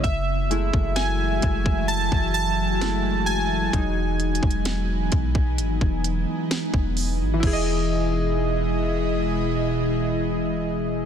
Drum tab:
CC |------------------------------------------------|------------------------------------------------|x-----------------------------------------------|
HH |x-----x-----x-----x-----x-----x-----x-----x-----|x-----x-x-x-x-----x-----x-----x-----x-----o-----|------------------------------------------------|
SD |------------o-----------------------o-----------|------------o-----------------------o-----------|------------------------------------------------|
BD |o--------o--------o--o-----o--------------------|o--------o--------o--o-----o-----------o--------|o-----------------------------------------------|